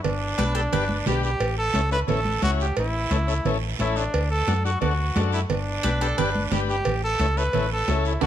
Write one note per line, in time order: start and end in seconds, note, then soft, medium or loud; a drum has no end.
0.03 0.32 G1 medium
0.03 1.02 D4 medium
0.03 cowbell loud
0.03 low conga medium
0.03 long guiro medium
0.38 0.66 B1 loud
0.38 0.44 D4 medium
0.38 0.44 G4 medium
0.38 0.44 B4 medium
0.38 0.54 B4 medium
0.38 cowbell medium
0.38 high conga medium
0.38 short guiro medium
0.54 0.61 D4 medium
0.54 0.61 G4 medium
0.54 0.60 A4 medium
0.54 0.61 B4 medium
0.54 short guiro medium
0.72 1.00 G1 loud
0.72 0.84 D4 medium
0.72 0.84 G4 medium
0.72 0.84 B4 medium
0.72 0.96 B4 medium
0.72 cowbell medium
0.72 low conga medium
0.72 long guiro medium
0.89 high conga medium
1.06 1.33 B1 medium
1.06 1.30 D4 medium
1.06 1.30 G4 medium
1.06 1.23 G4 medium
1.06 1.31 B4 medium
1.06 cowbell medium
1.06 high conga medium
1.06 low conga medium
1.06 low timbale medium
1.06 short guiro medium
1.23 1.56 G4 medium
1.23 short guiro medium
1.40 1.68 A1 medium
1.40 cowbell loud
1.40 long guiro medium
1.58 1.90 A4 loud
1.74 2.02 C#2 medium
1.74 1.81 C#4 medium
1.74 1.81 E4 medium
1.74 1.81 A4 medium
1.74 cowbell medium
1.74 high conga medium
1.74 short guiro medium
1.91 1.98 C#4 medium
1.91 1.98 E4 medium
1.91 1.98 A4 medium
1.91 2.00 B4 loud
1.91 short guiro medium
2.07 2.36 A1 medium
2.07 2.20 C#4 medium
2.07 2.21 E4 medium
2.07 2.20 A4 medium
2.07 2.41 A4 medium
2.07 cowbell medium
2.07 low conga medium
2.07 long guiro medium
2.25 high conga medium
2.42 2.70 C#2 medium
2.42 2.66 C#4 medium
2.42 2.67 E4 medium
2.42 2.67 F#4 medium
2.42 2.51 F#4 medium
2.42 cowbell medium
2.42 high conga medium
2.42 short guiro medium
2.60 2.76 G4 medium
2.60 short guiro medium
2.77 3.04 A1 medium
2.77 3.49 E4 loud
2.77 cowbell loud
2.77 long guiro medium
3.11 3.38 C#2 medium
3.11 3.17 C#4 medium
3.11 3.17 E4 medium
3.11 3.18 A4 medium
3.11 cowbell medium
3.11 high conga medium
3.11 short guiro medium
3.27 3.34 C#4 medium
3.27 3.34 E4 medium
3.27 3.34 A4 medium
3.27 short guiro medium
3.45 3.73 A1 loud
3.45 3.57 C#4 medium
3.45 3.58 E4 medium
3.45 3.58 A4 medium
3.45 cowbell medium
3.45 low conga medium
3.45 long guiro medium
3.79 4.06 A1 medium
3.79 4.04 C#4 medium
3.79 3.98 E4 medium
3.79 4.04 E4 medium
3.79 4.04 A4 medium
3.79 cowbell medium
3.79 high conga medium
3.79 short guiro medium
3.96 4.30 D4 medium
3.96 short guiro medium
4.14 4.41 D2 loud
4.14 cowbell loud
4.14 long guiro medium
4.31 4.62 A4 loud
4.47 4.75 F#2 loud
4.47 4.54 D4 medium
4.47 4.54 F#4 medium
4.47 4.54 A4 medium
4.47 cowbell medium
4.47 high conga medium
4.47 short guiro medium
4.64 4.71 D4 medium
4.64 4.71 F#4 medium
4.64 4.81 F#4 medium
4.64 4.71 A4 medium
4.64 short guiro medium
4.81 5.09 D2 loud
4.81 4.93 D4 medium
4.81 5.29 F#4 medium
4.81 4.94 F#4 medium
4.81 4.94 A4 medium
4.81 cowbell medium
4.81 low conga medium
4.81 long guiro medium
5.16 5.43 F#2 medium
5.16 5.40 D4 medium
5.16 5.40 F#4 medium
5.16 5.40 A4 medium
5.16 cowbell medium
5.16 high conga medium
5.16 low timbale medium
5.16 short guiro medium
5.33 5.41 E4 medium
5.33 short guiro medium
5.50 5.77 G1 medium
5.50 6.49 D4 medium
5.50 cowbell loud
5.50 low conga medium
5.50 long guiro medium
5.83 6.12 B1 loud
5.83 5.90 D4 medium
5.83 5.90 G4 medium
5.83 6.01 B4 loud
5.83 5.90 B4 medium
5.83 cowbell medium
5.83 high conga medium
5.83 short guiro medium
6.01 6.07 D4 medium
6.01 6.07 G4 medium
6.01 6.18 A4 medium
6.01 6.07 B4 medium
6.01 short guiro medium
6.17 6.45 G1 loud
6.17 6.30 D4 medium
6.17 6.30 G4 medium
6.17 6.42 B4 medium
6.17 6.30 B4 medium
6.17 cowbell medium
6.17 low conga medium
6.17 long guiro medium
6.35 high conga medium
6.52 6.79 G1 medium
6.52 6.76 D4 medium
6.52 6.76 G4 medium
6.52 6.60 G4 medium
6.52 6.76 B4 medium
6.52 cowbell medium
6.52 high conga medium
6.52 low conga medium
6.52 short guiro medium
6.69 7.01 G4 loud
6.69 short guiro medium
6.85 7.13 A1 medium
6.85 cowbell loud
6.85 low conga medium
6.85 long guiro medium
7.04 7.39 A4 loud
7.19 7.47 C#2 loud
7.19 7.27 C#4 medium
7.19 7.27 E4 medium
7.19 7.27 A4 medium
7.19 cowbell medium
7.19 high conga medium
7.19 short guiro medium
7.37 7.43 C#4 medium
7.37 7.43 E4 medium
7.37 7.44 A4 medium
7.37 7.72 B4 loud
7.37 short guiro medium
7.53 7.81 A1 loud
7.53 7.66 C#4 medium
7.53 7.67 E4 medium
7.53 7.67 A4 medium
7.53 cowbell medium
7.53 low conga medium
7.53 long guiro medium
7.72 8.04 A4 loud
7.88 8.16 C#2 medium
7.88 8.13 C#4 medium
7.88 8.13 E4 medium
7.88 8.14 A4 medium
7.88 cowbell medium
7.88 high conga medium
7.88 low timbale medium
7.88 short guiro medium
8.05 8.22 E4 medium
8.05 short guiro medium
8.21 8.27 D2 medium
8.21 8.27 D4 loud
8.21 8.27 F#4 medium
8.21 8.27 A4 medium
8.21 low conga loud
8.21 high timbale loud
8.21 long guiro loud